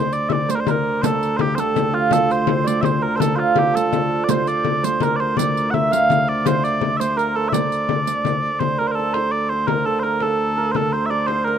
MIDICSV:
0, 0, Header, 1, 6, 480
1, 0, Start_track
1, 0, Key_signature, -1, "minor"
1, 0, Tempo, 360144
1, 1375, Time_signature, 6, 3, 24, 8
1, 15439, End_track
2, 0, Start_track
2, 0, Title_t, "Bagpipes"
2, 0, Program_c, 0, 109
2, 0, Note_on_c, 0, 72, 85
2, 177, Note_off_c, 0, 72, 0
2, 177, Note_on_c, 0, 74, 80
2, 386, Note_off_c, 0, 74, 0
2, 386, Note_on_c, 0, 76, 80
2, 432, Note_off_c, 0, 76, 0
2, 432, Note_on_c, 0, 74, 80
2, 679, Note_off_c, 0, 74, 0
2, 679, Note_on_c, 0, 72, 90
2, 735, Note_off_c, 0, 72, 0
2, 735, Note_on_c, 0, 70, 73
2, 799, Note_off_c, 0, 70, 0
2, 799, Note_on_c, 0, 72, 85
2, 940, Note_off_c, 0, 72, 0
2, 940, Note_on_c, 0, 70, 77
2, 1356, Note_off_c, 0, 70, 0
2, 1356, Note_on_c, 0, 72, 85
2, 1405, Note_off_c, 0, 72, 0
2, 1405, Note_on_c, 0, 69, 85
2, 1821, Note_off_c, 0, 69, 0
2, 1821, Note_on_c, 0, 72, 85
2, 1880, Note_off_c, 0, 72, 0
2, 1881, Note_on_c, 0, 67, 85
2, 2068, Note_off_c, 0, 67, 0
2, 2068, Note_on_c, 0, 72, 80
2, 2126, Note_off_c, 0, 72, 0
2, 2126, Note_on_c, 0, 69, 80
2, 2589, Note_off_c, 0, 69, 0
2, 2589, Note_on_c, 0, 65, 82
2, 2837, Note_off_c, 0, 65, 0
2, 2837, Note_on_c, 0, 69, 95
2, 3085, Note_off_c, 0, 69, 0
2, 3085, Note_on_c, 0, 72, 82
2, 3565, Note_off_c, 0, 72, 0
2, 3565, Note_on_c, 0, 74, 94
2, 3746, Note_off_c, 0, 74, 0
2, 3746, Note_on_c, 0, 76, 80
2, 3795, Note_off_c, 0, 76, 0
2, 3795, Note_on_c, 0, 72, 80
2, 4029, Note_off_c, 0, 72, 0
2, 4029, Note_on_c, 0, 70, 89
2, 4208, Note_off_c, 0, 70, 0
2, 4208, Note_on_c, 0, 72, 93
2, 4267, Note_off_c, 0, 72, 0
2, 4267, Note_on_c, 0, 69, 93
2, 4470, Note_off_c, 0, 69, 0
2, 4470, Note_on_c, 0, 72, 74
2, 4517, Note_off_c, 0, 72, 0
2, 4517, Note_on_c, 0, 65, 74
2, 4775, Note_off_c, 0, 65, 0
2, 4775, Note_on_c, 0, 67, 77
2, 5009, Note_off_c, 0, 67, 0
2, 5009, Note_on_c, 0, 69, 90
2, 5652, Note_off_c, 0, 69, 0
2, 5652, Note_on_c, 0, 74, 70
2, 5736, Note_off_c, 0, 74, 0
2, 5736, Note_on_c, 0, 72, 88
2, 5972, Note_off_c, 0, 72, 0
2, 5972, Note_on_c, 0, 74, 102
2, 6461, Note_off_c, 0, 74, 0
2, 6461, Note_on_c, 0, 72, 94
2, 6711, Note_off_c, 0, 72, 0
2, 6711, Note_on_c, 0, 70, 76
2, 6881, Note_off_c, 0, 70, 0
2, 6881, Note_on_c, 0, 74, 90
2, 6937, Note_off_c, 0, 74, 0
2, 6937, Note_on_c, 0, 72, 90
2, 7164, Note_off_c, 0, 72, 0
2, 7164, Note_on_c, 0, 74, 94
2, 7603, Note_on_c, 0, 78, 85
2, 7604, Note_off_c, 0, 74, 0
2, 7651, Note_off_c, 0, 78, 0
2, 7651, Note_on_c, 0, 76, 85
2, 7895, Note_off_c, 0, 76, 0
2, 7895, Note_on_c, 0, 77, 111
2, 8378, Note_off_c, 0, 77, 0
2, 8378, Note_on_c, 0, 74, 92
2, 8627, Note_off_c, 0, 74, 0
2, 8627, Note_on_c, 0, 72, 100
2, 8853, Note_off_c, 0, 72, 0
2, 8853, Note_on_c, 0, 74, 89
2, 9285, Note_off_c, 0, 74, 0
2, 9285, Note_on_c, 0, 76, 93
2, 9329, Note_off_c, 0, 76, 0
2, 9329, Note_on_c, 0, 72, 93
2, 9557, Note_off_c, 0, 72, 0
2, 9557, Note_on_c, 0, 70, 82
2, 9803, Note_off_c, 0, 70, 0
2, 9803, Note_on_c, 0, 69, 89
2, 9978, Note_off_c, 0, 69, 0
2, 9978, Note_on_c, 0, 76, 88
2, 10034, Note_off_c, 0, 76, 0
2, 10034, Note_on_c, 0, 74, 88
2, 11459, Note_off_c, 0, 74, 0
2, 11459, Note_on_c, 0, 72, 93
2, 11710, Note_off_c, 0, 72, 0
2, 11710, Note_on_c, 0, 70, 88
2, 11824, Note_off_c, 0, 70, 0
2, 11824, Note_on_c, 0, 72, 63
2, 11878, Note_off_c, 0, 72, 0
2, 11878, Note_on_c, 0, 70, 63
2, 11927, Note_off_c, 0, 70, 0
2, 11927, Note_on_c, 0, 69, 85
2, 12176, Note_off_c, 0, 69, 0
2, 12176, Note_on_c, 0, 72, 99
2, 12420, Note_off_c, 0, 72, 0
2, 12420, Note_on_c, 0, 74, 87
2, 12659, Note_off_c, 0, 74, 0
2, 12659, Note_on_c, 0, 72, 90
2, 12888, Note_off_c, 0, 72, 0
2, 12888, Note_on_c, 0, 70, 88
2, 13133, Note_off_c, 0, 70, 0
2, 13133, Note_on_c, 0, 69, 83
2, 13320, Note_off_c, 0, 69, 0
2, 13320, Note_on_c, 0, 72, 83
2, 13368, Note_off_c, 0, 72, 0
2, 13368, Note_on_c, 0, 70, 83
2, 13625, Note_off_c, 0, 70, 0
2, 13625, Note_on_c, 0, 69, 85
2, 14281, Note_off_c, 0, 69, 0
2, 14281, Note_on_c, 0, 72, 82
2, 14338, Note_off_c, 0, 72, 0
2, 14338, Note_on_c, 0, 69, 82
2, 14561, Note_off_c, 0, 69, 0
2, 14561, Note_on_c, 0, 72, 82
2, 14742, Note_off_c, 0, 72, 0
2, 14742, Note_on_c, 0, 76, 91
2, 14795, Note_off_c, 0, 76, 0
2, 14795, Note_on_c, 0, 74, 91
2, 15020, Note_off_c, 0, 74, 0
2, 15020, Note_on_c, 0, 72, 92
2, 15252, Note_off_c, 0, 72, 0
2, 15252, Note_on_c, 0, 70, 84
2, 15439, Note_off_c, 0, 70, 0
2, 15439, End_track
3, 0, Start_track
3, 0, Title_t, "Hammered dulcimer"
3, 0, Program_c, 1, 15
3, 0, Note_on_c, 1, 69, 62
3, 0, Note_on_c, 1, 72, 77
3, 0, Note_on_c, 1, 74, 74
3, 420, Note_off_c, 1, 74, 0
3, 425, Note_on_c, 1, 74, 67
3, 644, Note_off_c, 1, 72, 0
3, 649, Note_on_c, 1, 72, 72
3, 750, Note_off_c, 1, 72, 0
3, 755, Note_on_c, 1, 72, 73
3, 902, Note_on_c, 1, 70, 70
3, 982, Note_off_c, 1, 69, 0
3, 1387, Note_on_c, 1, 69, 77
3, 1467, Note_off_c, 1, 70, 0
3, 1848, Note_on_c, 1, 67, 66
3, 2100, Note_off_c, 1, 69, 0
3, 2106, Note_on_c, 1, 69, 75
3, 2576, Note_on_c, 1, 65, 66
3, 2821, Note_off_c, 1, 69, 0
3, 2826, Note_on_c, 1, 69, 81
3, 3065, Note_off_c, 1, 72, 0
3, 3071, Note_on_c, 1, 72, 74
3, 3312, Note_off_c, 1, 72, 0
3, 3317, Note_on_c, 1, 72, 75
3, 3517, Note_off_c, 1, 74, 0
3, 3523, Note_on_c, 1, 74, 78
3, 3776, Note_off_c, 1, 72, 0
3, 3781, Note_on_c, 1, 72, 74
3, 4021, Note_on_c, 1, 70, 67
3, 4101, Note_off_c, 1, 69, 0
3, 4228, Note_on_c, 1, 69, 81
3, 4308, Note_off_c, 1, 70, 0
3, 4470, Note_off_c, 1, 65, 0
3, 4476, Note_on_c, 1, 65, 69
3, 4975, Note_off_c, 1, 69, 0
3, 4980, Note_on_c, 1, 69, 68
3, 5718, Note_off_c, 1, 72, 0
3, 5723, Note_on_c, 1, 72, 86
3, 5956, Note_off_c, 1, 74, 0
3, 5961, Note_on_c, 1, 74, 78
3, 6031, Note_off_c, 1, 67, 0
3, 6195, Note_off_c, 1, 74, 0
3, 6201, Note_on_c, 1, 74, 71
3, 6435, Note_off_c, 1, 72, 0
3, 6441, Note_on_c, 1, 72, 76
3, 6686, Note_on_c, 1, 70, 78
3, 6766, Note_off_c, 1, 69, 0
3, 6923, Note_off_c, 1, 72, 0
3, 6929, Note_on_c, 1, 72, 75
3, 7164, Note_off_c, 1, 74, 0
3, 7169, Note_on_c, 1, 74, 78
3, 7649, Note_on_c, 1, 76, 88
3, 7729, Note_off_c, 1, 65, 0
3, 7880, Note_on_c, 1, 77, 77
3, 7960, Note_off_c, 1, 76, 0
3, 8361, Note_off_c, 1, 74, 0
3, 8366, Note_on_c, 1, 74, 76
3, 8597, Note_off_c, 1, 72, 0
3, 8602, Note_on_c, 1, 72, 90
3, 8859, Note_off_c, 1, 74, 0
3, 8864, Note_on_c, 1, 74, 78
3, 9079, Note_off_c, 1, 74, 0
3, 9085, Note_on_c, 1, 74, 75
3, 9323, Note_off_c, 1, 72, 0
3, 9328, Note_on_c, 1, 72, 77
3, 9552, Note_off_c, 1, 70, 0
3, 9558, Note_on_c, 1, 70, 81
3, 9813, Note_on_c, 1, 69, 69
3, 9893, Note_off_c, 1, 70, 0
3, 10050, Note_off_c, 1, 74, 0
3, 10055, Note_on_c, 1, 74, 78
3, 10837, Note_off_c, 1, 77, 0
3, 11491, Note_off_c, 1, 72, 0
3, 11496, Note_on_c, 1, 72, 80
3, 11738, Note_on_c, 1, 70, 63
3, 11818, Note_off_c, 1, 69, 0
3, 11986, Note_on_c, 1, 69, 71
3, 12066, Note_off_c, 1, 70, 0
3, 12210, Note_off_c, 1, 72, 0
3, 12215, Note_on_c, 1, 72, 72
3, 12689, Note_off_c, 1, 72, 0
3, 12694, Note_on_c, 1, 72, 69
3, 12913, Note_on_c, 1, 70, 76
3, 12993, Note_off_c, 1, 69, 0
3, 13148, Note_on_c, 1, 69, 76
3, 13228, Note_off_c, 1, 70, 0
3, 13337, Note_off_c, 1, 74, 0
3, 13380, Note_on_c, 1, 70, 72
3, 13460, Note_off_c, 1, 69, 0
3, 13622, Note_on_c, 1, 69, 75
3, 13702, Note_off_c, 1, 70, 0
3, 14094, Note_on_c, 1, 70, 74
3, 14174, Note_off_c, 1, 69, 0
3, 14343, Note_on_c, 1, 69, 76
3, 14423, Note_off_c, 1, 70, 0
3, 14575, Note_off_c, 1, 72, 0
3, 14580, Note_on_c, 1, 72, 78
3, 14802, Note_on_c, 1, 74, 86
3, 15022, Note_off_c, 1, 72, 0
3, 15027, Note_on_c, 1, 72, 83
3, 15293, Note_on_c, 1, 70, 79
3, 15373, Note_off_c, 1, 69, 0
3, 15439, Note_off_c, 1, 70, 0
3, 15439, Note_off_c, 1, 72, 0
3, 15439, Note_off_c, 1, 74, 0
3, 15439, End_track
4, 0, Start_track
4, 0, Title_t, "Viola da gamba"
4, 0, Program_c, 2, 42
4, 0, Note_on_c, 2, 38, 71
4, 5712, Note_off_c, 2, 38, 0
4, 5720, Note_on_c, 2, 38, 66
4, 11451, Note_off_c, 2, 38, 0
4, 11459, Note_on_c, 2, 38, 65
4, 15439, Note_off_c, 2, 38, 0
4, 15439, End_track
5, 0, Start_track
5, 0, Title_t, "Frame drum"
5, 396, Note_on_c, 9, 64, 72
5, 529, Note_off_c, 9, 64, 0
5, 651, Note_on_c, 9, 64, 27
5, 784, Note_off_c, 9, 64, 0
5, 888, Note_on_c, 9, 64, 78
5, 1021, Note_off_c, 9, 64, 0
5, 1376, Note_on_c, 9, 64, 74
5, 1509, Note_off_c, 9, 64, 0
5, 1854, Note_on_c, 9, 64, 79
5, 1988, Note_off_c, 9, 64, 0
5, 2100, Note_on_c, 9, 64, 25
5, 2233, Note_off_c, 9, 64, 0
5, 2347, Note_on_c, 9, 64, 77
5, 2480, Note_off_c, 9, 64, 0
5, 2810, Note_on_c, 9, 64, 77
5, 2943, Note_off_c, 9, 64, 0
5, 3293, Note_on_c, 9, 64, 85
5, 3426, Note_off_c, 9, 64, 0
5, 3768, Note_on_c, 9, 64, 88
5, 3902, Note_off_c, 9, 64, 0
5, 4266, Note_on_c, 9, 64, 77
5, 4399, Note_off_c, 9, 64, 0
5, 4512, Note_on_c, 9, 64, 29
5, 4646, Note_off_c, 9, 64, 0
5, 4739, Note_on_c, 9, 64, 83
5, 4873, Note_off_c, 9, 64, 0
5, 4993, Note_on_c, 9, 64, 23
5, 5126, Note_off_c, 9, 64, 0
5, 5233, Note_on_c, 9, 64, 76
5, 5366, Note_off_c, 9, 64, 0
5, 5475, Note_on_c, 9, 64, 21
5, 5609, Note_off_c, 9, 64, 0
5, 5719, Note_on_c, 9, 64, 69
5, 5852, Note_off_c, 9, 64, 0
5, 6191, Note_on_c, 9, 64, 68
5, 6324, Note_off_c, 9, 64, 0
5, 6670, Note_on_c, 9, 64, 77
5, 6803, Note_off_c, 9, 64, 0
5, 7153, Note_on_c, 9, 64, 68
5, 7287, Note_off_c, 9, 64, 0
5, 7648, Note_on_c, 9, 64, 70
5, 7781, Note_off_c, 9, 64, 0
5, 8129, Note_on_c, 9, 64, 85
5, 8262, Note_off_c, 9, 64, 0
5, 8607, Note_on_c, 9, 64, 90
5, 8741, Note_off_c, 9, 64, 0
5, 9081, Note_on_c, 9, 64, 70
5, 9214, Note_off_c, 9, 64, 0
5, 10029, Note_on_c, 9, 64, 74
5, 10162, Note_off_c, 9, 64, 0
5, 10272, Note_on_c, 9, 64, 27
5, 10405, Note_off_c, 9, 64, 0
5, 10514, Note_on_c, 9, 64, 73
5, 10647, Note_off_c, 9, 64, 0
5, 10991, Note_on_c, 9, 64, 73
5, 11125, Note_off_c, 9, 64, 0
5, 11235, Note_on_c, 9, 64, 24
5, 11369, Note_off_c, 9, 64, 0
5, 11469, Note_on_c, 9, 64, 70
5, 11602, Note_off_c, 9, 64, 0
5, 11716, Note_on_c, 9, 64, 26
5, 11849, Note_off_c, 9, 64, 0
5, 12185, Note_on_c, 9, 64, 55
5, 12318, Note_off_c, 9, 64, 0
5, 12898, Note_on_c, 9, 64, 71
5, 13031, Note_off_c, 9, 64, 0
5, 13130, Note_on_c, 9, 64, 24
5, 13264, Note_off_c, 9, 64, 0
5, 13601, Note_on_c, 9, 64, 55
5, 13734, Note_off_c, 9, 64, 0
5, 14323, Note_on_c, 9, 64, 66
5, 14457, Note_off_c, 9, 64, 0
5, 14559, Note_on_c, 9, 64, 24
5, 14692, Note_off_c, 9, 64, 0
5, 15035, Note_on_c, 9, 64, 55
5, 15169, Note_off_c, 9, 64, 0
5, 15439, End_track
6, 0, Start_track
6, 0, Title_t, "Riq"
6, 167, Note_on_c, 9, 54, 18
6, 301, Note_off_c, 9, 54, 0
6, 660, Note_on_c, 9, 54, 51
6, 793, Note_off_c, 9, 54, 0
6, 906, Note_on_c, 9, 54, 19
6, 1039, Note_off_c, 9, 54, 0
6, 1385, Note_on_c, 9, 54, 68
6, 1519, Note_off_c, 9, 54, 0
6, 1637, Note_on_c, 9, 54, 21
6, 1770, Note_off_c, 9, 54, 0
6, 2105, Note_on_c, 9, 54, 49
6, 2239, Note_off_c, 9, 54, 0
6, 2352, Note_on_c, 9, 54, 19
6, 2485, Note_off_c, 9, 54, 0
6, 2834, Note_on_c, 9, 54, 56
6, 2967, Note_off_c, 9, 54, 0
6, 3079, Note_on_c, 9, 54, 18
6, 3212, Note_off_c, 9, 54, 0
6, 3565, Note_on_c, 9, 54, 57
6, 3699, Note_off_c, 9, 54, 0
6, 3805, Note_on_c, 9, 54, 20
6, 3938, Note_off_c, 9, 54, 0
6, 4288, Note_on_c, 9, 54, 62
6, 4421, Note_off_c, 9, 54, 0
6, 5020, Note_on_c, 9, 54, 58
6, 5154, Note_off_c, 9, 54, 0
6, 5243, Note_on_c, 9, 54, 22
6, 5377, Note_off_c, 9, 54, 0
6, 5713, Note_on_c, 9, 54, 66
6, 5846, Note_off_c, 9, 54, 0
6, 5961, Note_on_c, 9, 54, 19
6, 6094, Note_off_c, 9, 54, 0
6, 6453, Note_on_c, 9, 54, 57
6, 6586, Note_off_c, 9, 54, 0
6, 6700, Note_on_c, 9, 54, 21
6, 6834, Note_off_c, 9, 54, 0
6, 7186, Note_on_c, 9, 54, 66
6, 7319, Note_off_c, 9, 54, 0
6, 7428, Note_on_c, 9, 54, 23
6, 7561, Note_off_c, 9, 54, 0
6, 7906, Note_on_c, 9, 54, 59
6, 8039, Note_off_c, 9, 54, 0
6, 8150, Note_on_c, 9, 54, 21
6, 8283, Note_off_c, 9, 54, 0
6, 8617, Note_on_c, 9, 54, 58
6, 8750, Note_off_c, 9, 54, 0
6, 8859, Note_on_c, 9, 54, 20
6, 8992, Note_off_c, 9, 54, 0
6, 9345, Note_on_c, 9, 54, 53
6, 9478, Note_off_c, 9, 54, 0
6, 9583, Note_on_c, 9, 54, 19
6, 9717, Note_off_c, 9, 54, 0
6, 10052, Note_on_c, 9, 54, 62
6, 10185, Note_off_c, 9, 54, 0
6, 10291, Note_on_c, 9, 54, 20
6, 10424, Note_off_c, 9, 54, 0
6, 10760, Note_on_c, 9, 54, 52
6, 10893, Note_off_c, 9, 54, 0
6, 11015, Note_on_c, 9, 54, 17
6, 11149, Note_off_c, 9, 54, 0
6, 15439, End_track
0, 0, End_of_file